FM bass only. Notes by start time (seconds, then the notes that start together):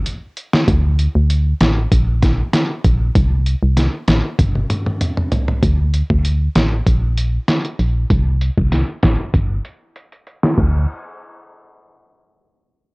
0.68 D2
1.15 D2
1.61 A1
1.92 A#1
2.84 A#1
3.15 C2
3.63 C2
4.08 A1
4.39 G1
5.63 D2
6.10 D2
6.56 A1
6.86 A#1
7.79 A#1
8.10 C2
8.57 C2
9.03 A1
9.34 G1
10.58 D2